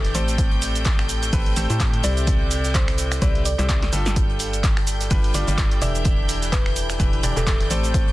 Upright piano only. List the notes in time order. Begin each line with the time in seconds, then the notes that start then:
Already playing: E3 D4 E4 G4 D5
0.15 A2 C4 G4 A4 D5
1.33 A2 C4 G4 A4 B4
1.56 A2 C4 G4 A4 C5
1.70 A2 C4 G4 A4 C5
2.04 C3 C4 E4 G4 D5
3.22 C3 C4 E4 G4 B4
3.59 C3 C4 E4 G4 C5
3.93 G3 D4 F4 G4 A4
5.11 G3 D4 F4 G4 B4
5.34 G3 D4 F4 G4 D5
5.48 G3 D4 F4 G4 D5
5.82 E3 D4 E4 G4 E5
7.00 E3 D4 E4 G4 B4
7.23 E3 D4 E4 G4 D5
7.37 E3 D4 E4 G4 D5
7.71 A2 C4 G4 A4 D5